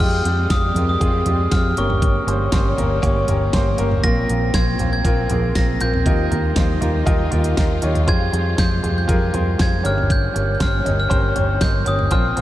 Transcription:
0.00 F2 F3 G3 G#3 C4 F4 G4 F6, kick
0.25 F2 G#3 C4 F4 G4, closed hi-hat
0.50 F2 G#3 F4 D#6, kick, snare, closed hi-hat
0.75 F2 G#3 C4 F4 A#4, closed hi-hat, floor tom
0.89 D#6
1.00 F2 G#3 C4 F4 G#4, kick, closed hi-hat
1.26 F2 G#3 C4 F4 G4, closed hi-hat, floor tom
1.51 F2 G#3 C4 F4 G4 F6, kick, snare, closed hi-hat
1.76 G1 G2 G3 A#3 C#4 G4 A#4 C#6, closed hi-hat
1.90 floor tom
2.02 kick, closed hi-hat
2.27 G1 A#3 C#4 G4 C5, closed hi-hat
2.52 G1 A#3 C#4 G4 C5, kick, snare, closed hi-hat
2.77 G1 A#3 C#4 G4 A#4, closed hi-hat, floor tom
3.02 G1 A#3 C#4 G4 C#5, kick, closed hi-hat
3.27 G1 A#3 C#4 G4 A#4, closed hi-hat, floor tom
3.53 G1 A#3 C#4 G4 C5, kick, snare, closed hi-hat
3.77 G1 A#3 C#4 G4 A#4, closed hi-hat
3.91 floor tom
4.04 A#1 A#2 F3 A#3 C4 F4 A#4 A#6, kick, closed hi-hat
4.29 A#1 A#3 C4 F4 A#4, closed hi-hat
4.54 A#1 A#3 C4 F4 C5 G#6, kick, snare, closed hi-hat
4.79 A#1 A#3 C4 F4 C5, closed hi-hat, floor tom
4.93 G#6
5.04 A#1 A#3 C4 F4 A#4, kick, closed hi-hat
5.30 A#1 A#3 C4 F4 G#4, closed hi-hat, floor tom
5.55 A#1 A#3 C4 F4 A#4 A#6, kick, snare, closed hi-hat
5.80 A#1 A#3 C4 F4 A#4 G6, closed hi-hat
5.93 floor tom
6.06 D#2 D#3 G3 D#4 F4 G4 A#4, kick, closed hi-hat
6.31 D#2 D#4 F4 G4 A#4, closed hi-hat, floor tom
6.56 D#2 D#4 F4 G4 C5, kick, snare, closed hi-hat
6.81 D#2 D#4 F4 G4 A#4, closed hi-hat, floor tom
7.06 D#2 D#4 F4 G4 A#4, kick, closed hi-hat
7.31 D#2 D#4 F4 G4 A#4, closed hi-hat, floor tom
7.44 closed hi-hat
7.57 D#2 D#4 F4 G4 A#4, kick, snare, closed hi-hat
7.82 D#2 D#4 F4 G4 C#5, closed hi-hat
7.95 closed hi-hat, floor tom
8.07 F2 C3 G#3 F4 G4 G#4 C5 G#6, kick, closed hi-hat
8.32 F2 F4 G4 G#4 C5, closed hi-hat
8.57 F2 F4 G4 G#4 C5 G6, kick, snare, closed hi-hat
8.83 F2 F4 G4 G#4 C5, closed hi-hat, floor tom
8.98 G6
9.08 F2 F4 G4 G#4 A#4, kick, closed hi-hat
9.33 F2 F4 G4 G#4 C5, closed hi-hat, floor tom
9.58 F2 F4 G4 G#4 C5 G#6, kick, snare, closed hi-hat
9.83 G1 G2 A#3 C#4 G4 A#4 C#5 F6, closed hi-hat
9.98 floor tom
10.10 G6, kick, closed hi-hat
10.34 G1 C#4 G4 A#4 C#5, closed hi-hat
10.55 G6
10.59 G1 C#4 G4 A#4 C5 F6, kick, snare, closed hi-hat
10.84 G1 C#4 G4 A#4 D#5, closed hi-hat, floor tom
11.00 F6
11.09 G1 C#4 G4 A#4 C5, kick, closed hi-hat
11.35 G1 C#4 G4 A#4 C#5, closed hi-hat, floor tom
11.61 G1 C#4 G4 A#4 D#5 G6, kick, snare, closed hi-hat
11.85 G1 C#4 G4 A#4 C#5 D#6, closed hi-hat
11.99 floor tom
12.11 A#1 A#2 F3 C4 F4 A#4 C5 F6, kick, closed hi-hat
12.36 A#1 C4 F4 A#4 C5, closed hi-hat

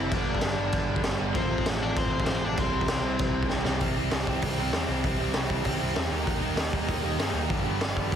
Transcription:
Already playing: C3 G3 C4 E4 E5
0.00 C3
0.12 G1 G2 D3 G3 B3 D4 D5, kick, crash
0.16 D4
0.27 G1
0.35 kick
0.41 G1, snare, crash
0.57 G1 G2 D3 G3 B3 D4
0.72 G1, kick, crash
0.88 G1
0.96 kick
1.03 G1 G2 D3 G3 B3 D4, snare, crash
1.19 G1 G2 D3 G3
1.34 A1 F2 A2 C3 F3 A3 C4 F4 C5, kick, crash
1.51 A1
1.58 kick
1.66 A1, snare, crash
1.80 A2 F3 A3 C4 D4 F4
1.84 D5
1.95 A1 C4 C5, kick, crash
2.11 A1 C4 C5
2.20 kick
2.25 A1 A2 F3 C4 C5, snare, crash
2.29 A3 C4 F4
2.42 A1 C3 F3 D4
2.46 F2 D5
2.57 C2 C3 E3 G3 C4 E4 C5, kick, crash
2.73 C2
2.81 kick
2.88 C2, snare, crash
3.03 C2 C3 E3 G3 C4 E4
3.19 C2, kick, crash
3.33 C2
3.43 kick
3.49 C2 C3 E3 G3 C4 E4, snare
3.65 C2 C3 G3 C4, snare
3.80 C2 C3 G3 C4 E4 G4, kick, open hi-hat
3.96 C2 C3 G3 C4 E4 G4
4.11 C2 C3 G3 C4 E4 G4, snare, open hi-hat
4.24 C2 C3 G3 C4, kick
4.28 C3 G3 C4 E4 G4
4.42 C2 C3 G3 C4 E4 G4, kick, open hi-hat
4.57 C2 C4 E4 G4
4.61 C3 G3 C4
4.72 E2 C3 G3 C4, snare, open hi-hat
4.77 E4 G4
4.85 C2 C3 G3 C4
4.90 C3 G3 C4 E4 G4
5.03 C2 C3 G3 C4 E4 G4, kick, open hi-hat
5.17 C2 C3 G3 C4 E4 G4
5.32 C2 C3 G3 C4 E4 G4, snare, open hi-hat
5.37 C3 C4
5.49 C2 C3 G3 C4 E4 G4, kick
5.64 C2 C3 G3 C4 E4 G4, kick, open hi-hat
5.79 C2 C3 G3 C4 E4 G4
5.94 E2 C3 G3 C4 E4 G4, snare, open hi-hat
6.08 D#2 D#3 G3 A#3 D#4 G4
6.24 D#2 D#3 G3 A#3 D#4 G4, kick, open hi-hat
6.40 D#2 D#3 G3 A#3 D#4 G4
6.56 D#2 D#3 G3 A#3 D#4 G4, snare, open hi-hat
6.72 D#2 D#3 G3 A#3 D#4 G4, kick
6.87 D#2 D#3 G3 A#3 D#4 G4, kick, open hi-hat
7.03 D#2 D#3 G3 A#3 D#4 G4
7.19 G2 D#3 G3 A#3 D#4 G4, snare, open hi-hat
7.34 D#2 D#3 G3 A#3 D#4 G4
7.48 G1 G2 D3 F3 G3 B3 D4 G4, kick, open hi-hat
7.64 G1 G2 D3 F3 G3 B3 D4 G4
7.79 G1 G2 D3 F3 G3 B3 D4 G4, snare, open hi-hat
7.94 G1 G2 D3 F3 G3 B3 D4 G4, kick
8.11 G1 G2 D3 F3 G3 B3 D4, kick

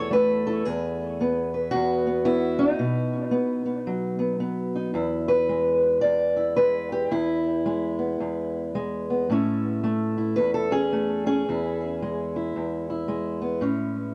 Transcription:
Already playing: E2 E4 A4 C#5
0.11 A3 B4
0.47 E4 A4
0.65 E2 G#4
1.21 B3
1.54 B4
1.71 E2 F#4
2.07 B3
2.25 B3 E4
2.59 D#4
2.79 B2 B3
3.31 B3
3.66 B3
3.87 F#3
4.19 B3
4.40 B3
4.75 D#4
4.94 E2 E4
5.28 B4
5.49 G#3
6.01 E2 D5
6.36 E4
6.56 G#3 B4
6.92 G4
7.11 E2 E4
7.66 G#3
7.99 B3
8.20 E2
8.75 G#3
9.10 B3
9.30 A2 A3 C#4 E4
9.84 A3
10.18 E4
10.36 E2 B4
10.54 A4
10.71 C#4 G#4
10.92 A3
11.26 C#4 G#4
11.49 E2 E4
12.02 G#3
12.36 E4
12.56 E2
12.90 E4
13.08 G#3
13.41 B3
13.61 A2 C#4

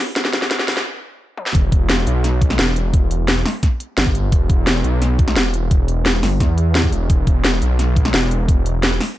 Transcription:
0.16 E1, snare, closed hi-hat
0.25 snare
0.33 snare, closed hi-hat
0.42 snare
0.51 snare, closed hi-hat
0.59 snare
0.68 B1, snare, open hi-hat
0.77 snare
1.38 high tom
1.46 snare
1.55 E1, kick, closed hi-hat
1.72 kick, closed hi-hat
1.89 snare, closed hi-hat
2.07 B1, closed hi-hat
2.24 snare, closed hi-hat
2.41 kick, closed hi-hat
2.50 snare
2.59 E1, snare, closed hi-hat
2.76 closed hi-hat
2.94 E1, kick, closed hi-hat
3.11 closed hi-hat
3.28 snare, closed hi-hat
3.46 snare, open hi-hat
3.63 kick, snare, closed hi-hat
3.80 closed hi-hat
3.98 G1, snare, closed hi-hat
4.06 kick
4.15 closed hi-hat
4.32 E1, kick, closed hi-hat
4.50 kick, closed hi-hat
4.67 snare, closed hi-hat
4.84 B1, closed hi-hat
5.02 snare, closed hi-hat
5.19 kick, closed hi-hat
5.28 snare
5.36 E1, snare, closed hi-hat
5.54 closed hi-hat
5.71 E1, kick, closed hi-hat
5.88 closed hi-hat
6.06 snare, closed hi-hat
6.23 G1, snare, open hi-hat
6.40 E2, kick, snare, closed hi-hat
6.58 closed hi-hat
6.75 snare, closed hi-hat
6.84 kick
6.92 E1, closed hi-hat
7.10 E1, kick, closed hi-hat
7.27 kick, closed hi-hat
7.44 snare, closed hi-hat
7.62 B1, closed hi-hat
7.79 snare, closed hi-hat
7.96 kick, closed hi-hat
8.05 snare
8.14 E1, snare, closed hi-hat
8.31 closed hi-hat
8.48 E1, kick, closed hi-hat
8.66 closed hi-hat
8.83 snare, closed hi-hat
9.01 snare, open hi-hat

